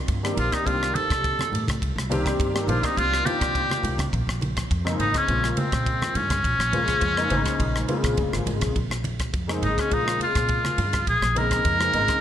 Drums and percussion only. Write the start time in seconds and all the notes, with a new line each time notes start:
0.08 kick, ride
0.25 cross-stick
0.37 ride, low conga
0.52 kick, cross-stick, ride
0.67 kick, ride
0.83 cross-stick
0.95 ride, high conga
1.10 kick, cross-stick, ride
1.24 kick, ride
1.39 cross-stick, high conga
1.53 ride, low conga
1.68 kick, cross-stick, ride, high conga
1.82 kick, ride
1.98 cross-stick
2.11 ride, high conga
2.26 kick, cross-stick, ride
2.40 kick, ride
2.56 cross-stick
2.68 ride, low conga
2.83 kick, cross-stick, ride
2.97 kick, ride
3.14 cross-stick
3.26 ride, high conga
3.41 kick, cross-stick, ride
3.55 kick, ride
3.70 cross-stick, high conga
3.83 ride, low conga
3.98 kick, cross-stick, ride, high conga
4.13 kick, ride
4.29 cross-stick
4.41 ride, high conga
4.57 kick, cross-stick, ride
4.71 kick, ride
4.87 cross-stick
5.00 ride, low conga
5.14 kick, cross-stick, ride
5.28 kick, ride
5.44 cross-stick
5.57 ride, high conga
5.72 kick, cross-stick, ride
5.86 kick, ride
6.02 cross-stick, high conga
6.15 ride, low conga
6.30 kick, cross-stick, ride, high conga
6.44 kick, ride
6.60 cross-stick
6.73 ride, high conga, low conga
6.88 kick, cross-stick, ride
7.01 kick, ride
7.17 cross-stick
7.30 ride, high conga, low conga
7.45 kick, cross-stick, ride
7.60 kick, ride
7.76 cross-stick
7.88 ride, high conga
8.04 kick, cross-stick, ride
8.17 kick, ride, low conga
8.33 cross-stick
8.46 ride, low conga
8.61 kick, cross-stick, ride, high conga
8.76 kick, ride
8.91 cross-stick
9.04 ride, high conga
9.19 kick, cross-stick, ride
9.34 kick, ride
9.49 cross-stick
9.62 ride, low conga
9.78 kick, cross-stick, ride
9.91 kick, ride
10.08 cross-stick
10.20 ride, high conga
10.35 kick, cross-stick, ride
10.49 kick, ride
10.65 cross-stick, high conga
10.78 ride, low conga
10.93 kick, cross-stick, ride, high conga
11.07 kick, ride
11.22 cross-stick
11.36 ride, high conga
11.51 kick, cross-stick, ride
11.65 kick, ride
11.81 cross-stick
11.93 ride, low conga
12.08 kick, cross-stick, ride